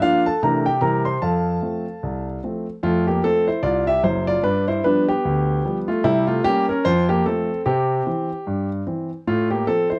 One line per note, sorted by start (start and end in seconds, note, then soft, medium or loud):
0.02 0.24 F3 medium
0.02 0.25 A#3 soft
0.02 0.25 D4 medium
0.02 0.25 F4 medium
0.02 0.22 F5 loud
0.26 0.42 A4 medium
0.26 0.40 A5 medium
0.43 0.77 C3 medium
0.43 0.65 E3 soft
0.43 0.65 A3 soft
0.43 0.65 D4 soft
0.43 0.65 A#4 medium
0.43 0.63 A#5 medium
0.66 0.82 G4 medium
0.66 0.80 G5 medium
0.81 1.16 C3 medium
0.81 1.04 E3 soft
0.81 1.04 G3 soft
0.81 1.04 C4 soft
0.81 1.04 A#4 medium
0.81 1.02 A#5 medium
1.05 1.22 C5 medium
1.05 1.20 C6 medium
1.22 1.57 F2 medium
1.22 2.40 A4 soft
1.22 2.39 F5 medium
1.22 2.25 A5 medium
1.62 1.85 F3 soft
1.62 1.84 A3 soft
1.62 1.85 C4 soft
2.03 2.37 C2 soft
2.44 2.66 F3 soft
2.44 2.66 A3 soft
2.44 2.66 C4 soft
2.83 3.17 F2 medium
2.83 3.06 A3 medium
2.83 3.03 F4 medium
3.07 3.23 A#3 medium
3.07 3.21 G4 medium
3.23 3.46 F3 soft
3.23 3.46 A3 soft
3.23 3.46 C4 medium
3.23 3.44 A4 medium
3.47 3.63 E4 medium
3.47 3.61 C5 medium
3.63 3.97 C2 medium
3.63 3.86 F4 medium
3.63 3.83 D5 medium
3.87 4.04 G4 medium
3.87 4.01 E5 medium
4.03 4.36 F#1 medium
4.03 4.36 F#2 medium
4.03 4.26 E4 medium
4.03 4.24 C5 medium
4.27 4.44 F4 medium
4.27 4.42 D5 medium
4.43 4.78 G2 medium
4.43 4.66 D4 medium
4.43 4.64 B4 medium
4.68 4.83 E4 medium
4.68 4.82 C5 medium
4.84 5.07 F3 soft
4.84 5.07 G3 soft
4.84 5.07 B3 medium
4.84 5.07 D4 medium
4.84 5.04 B4 medium
5.08 5.63 B3 medium
5.08 5.77 G4 medium
5.25 5.59 D2 medium
5.65 5.87 F3 soft
5.65 5.87 G3 soft
5.65 5.87 B3 soft
5.88 6.04 A3 medium
5.88 6.02 F4 medium
6.04 6.39 C3 medium
6.04 6.27 G3 medium
6.04 6.25 E4 loud
6.27 6.44 A3 medium
6.27 6.42 F4 medium
6.44 6.67 G3 soft
6.44 6.67 A#3 medium
6.44 6.67 C#4 medium
6.44 6.65 G4 loud
6.69 6.85 C#4 medium
6.69 6.83 A#4 medium
6.85 7.19 F2 medium
6.85 7.08 F4 medium
6.85 7.05 C5 loud
7.09 7.25 A#3 medium
7.09 7.23 G4 medium
7.26 7.48 F3 soft
7.26 7.49 A3 soft
7.26 7.64 C4 medium
7.26 7.60 A4 medium
7.66 8.00 C3 medium
7.66 8.05 C4 medium
7.66 8.68 G4 medium
8.07 8.29 E3 soft
8.07 8.29 C4 soft
8.47 8.81 G2 medium
8.87 9.09 E3 soft
8.87 9.09 C4 soft
9.27 9.61 A2 medium
9.27 9.49 A3 medium
9.27 9.47 F4 medium
9.51 9.67 A#3 soft
9.51 9.64 G4 medium
9.67 9.89 F3 soft
9.67 9.89 C4 medium
9.67 9.87 A4 medium
9.90 9.99 E4 soft
9.90 9.99 C5 medium